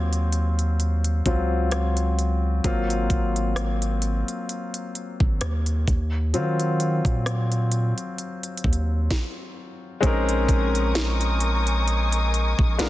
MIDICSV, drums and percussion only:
0, 0, Header, 1, 2, 480
1, 0, Start_track
1, 0, Tempo, 923077
1, 1375, Time_signature, 4, 2, 24, 8
1, 6704, End_track
2, 0, Start_track
2, 0, Title_t, "Drums"
2, 66, Note_on_c, 9, 42, 47
2, 118, Note_off_c, 9, 42, 0
2, 169, Note_on_c, 9, 42, 65
2, 221, Note_off_c, 9, 42, 0
2, 306, Note_on_c, 9, 42, 50
2, 358, Note_off_c, 9, 42, 0
2, 414, Note_on_c, 9, 42, 58
2, 466, Note_off_c, 9, 42, 0
2, 543, Note_on_c, 9, 42, 60
2, 595, Note_off_c, 9, 42, 0
2, 653, Note_on_c, 9, 36, 79
2, 653, Note_on_c, 9, 42, 50
2, 705, Note_off_c, 9, 36, 0
2, 705, Note_off_c, 9, 42, 0
2, 892, Note_on_c, 9, 42, 65
2, 894, Note_on_c, 9, 37, 96
2, 944, Note_off_c, 9, 42, 0
2, 946, Note_off_c, 9, 37, 0
2, 1023, Note_on_c, 9, 42, 49
2, 1075, Note_off_c, 9, 42, 0
2, 1137, Note_on_c, 9, 42, 56
2, 1189, Note_off_c, 9, 42, 0
2, 1374, Note_on_c, 9, 36, 108
2, 1375, Note_on_c, 9, 42, 69
2, 1426, Note_off_c, 9, 36, 0
2, 1427, Note_off_c, 9, 42, 0
2, 1509, Note_on_c, 9, 42, 54
2, 1561, Note_off_c, 9, 42, 0
2, 1612, Note_on_c, 9, 36, 93
2, 1614, Note_on_c, 9, 42, 69
2, 1664, Note_off_c, 9, 36, 0
2, 1666, Note_off_c, 9, 42, 0
2, 1748, Note_on_c, 9, 42, 50
2, 1800, Note_off_c, 9, 42, 0
2, 1852, Note_on_c, 9, 37, 112
2, 1855, Note_on_c, 9, 42, 71
2, 1904, Note_off_c, 9, 37, 0
2, 1907, Note_off_c, 9, 42, 0
2, 1986, Note_on_c, 9, 42, 48
2, 2038, Note_off_c, 9, 42, 0
2, 2090, Note_on_c, 9, 42, 67
2, 2142, Note_off_c, 9, 42, 0
2, 2227, Note_on_c, 9, 42, 53
2, 2279, Note_off_c, 9, 42, 0
2, 2336, Note_on_c, 9, 42, 55
2, 2388, Note_off_c, 9, 42, 0
2, 2465, Note_on_c, 9, 42, 59
2, 2517, Note_off_c, 9, 42, 0
2, 2575, Note_on_c, 9, 42, 47
2, 2627, Note_off_c, 9, 42, 0
2, 2705, Note_on_c, 9, 36, 91
2, 2757, Note_off_c, 9, 36, 0
2, 2813, Note_on_c, 9, 42, 69
2, 2815, Note_on_c, 9, 37, 103
2, 2865, Note_off_c, 9, 42, 0
2, 2867, Note_off_c, 9, 37, 0
2, 2945, Note_on_c, 9, 42, 48
2, 2997, Note_off_c, 9, 42, 0
2, 3055, Note_on_c, 9, 36, 98
2, 3059, Note_on_c, 9, 42, 56
2, 3107, Note_off_c, 9, 36, 0
2, 3111, Note_off_c, 9, 42, 0
2, 3296, Note_on_c, 9, 42, 69
2, 3348, Note_off_c, 9, 42, 0
2, 3430, Note_on_c, 9, 42, 53
2, 3482, Note_off_c, 9, 42, 0
2, 3536, Note_on_c, 9, 42, 69
2, 3588, Note_off_c, 9, 42, 0
2, 3665, Note_on_c, 9, 36, 105
2, 3671, Note_on_c, 9, 42, 50
2, 3717, Note_off_c, 9, 36, 0
2, 3723, Note_off_c, 9, 42, 0
2, 3776, Note_on_c, 9, 37, 113
2, 3779, Note_on_c, 9, 42, 67
2, 3828, Note_off_c, 9, 37, 0
2, 3831, Note_off_c, 9, 42, 0
2, 3909, Note_on_c, 9, 42, 48
2, 3961, Note_off_c, 9, 42, 0
2, 4012, Note_on_c, 9, 42, 70
2, 4064, Note_off_c, 9, 42, 0
2, 4148, Note_on_c, 9, 42, 53
2, 4200, Note_off_c, 9, 42, 0
2, 4256, Note_on_c, 9, 42, 56
2, 4308, Note_off_c, 9, 42, 0
2, 4386, Note_on_c, 9, 42, 54
2, 4438, Note_off_c, 9, 42, 0
2, 4459, Note_on_c, 9, 42, 52
2, 4494, Note_on_c, 9, 36, 80
2, 4511, Note_off_c, 9, 42, 0
2, 4538, Note_on_c, 9, 42, 47
2, 4546, Note_off_c, 9, 36, 0
2, 4590, Note_off_c, 9, 42, 0
2, 4735, Note_on_c, 9, 36, 98
2, 4736, Note_on_c, 9, 38, 81
2, 4787, Note_off_c, 9, 36, 0
2, 4788, Note_off_c, 9, 38, 0
2, 5215, Note_on_c, 9, 36, 104
2, 5217, Note_on_c, 9, 42, 71
2, 5267, Note_off_c, 9, 36, 0
2, 5269, Note_off_c, 9, 42, 0
2, 5349, Note_on_c, 9, 42, 55
2, 5401, Note_off_c, 9, 42, 0
2, 5453, Note_on_c, 9, 36, 103
2, 5454, Note_on_c, 9, 42, 76
2, 5505, Note_off_c, 9, 36, 0
2, 5506, Note_off_c, 9, 42, 0
2, 5590, Note_on_c, 9, 42, 52
2, 5642, Note_off_c, 9, 42, 0
2, 5695, Note_on_c, 9, 38, 113
2, 5698, Note_on_c, 9, 42, 74
2, 5747, Note_off_c, 9, 38, 0
2, 5750, Note_off_c, 9, 42, 0
2, 5828, Note_on_c, 9, 42, 50
2, 5880, Note_off_c, 9, 42, 0
2, 5930, Note_on_c, 9, 42, 69
2, 5982, Note_off_c, 9, 42, 0
2, 6067, Note_on_c, 9, 42, 59
2, 6119, Note_off_c, 9, 42, 0
2, 6176, Note_on_c, 9, 42, 62
2, 6228, Note_off_c, 9, 42, 0
2, 6305, Note_on_c, 9, 42, 65
2, 6357, Note_off_c, 9, 42, 0
2, 6417, Note_on_c, 9, 42, 53
2, 6469, Note_off_c, 9, 42, 0
2, 6546, Note_on_c, 9, 36, 101
2, 6598, Note_off_c, 9, 36, 0
2, 6652, Note_on_c, 9, 42, 70
2, 6654, Note_on_c, 9, 38, 112
2, 6704, Note_off_c, 9, 38, 0
2, 6704, Note_off_c, 9, 42, 0
2, 6704, End_track
0, 0, End_of_file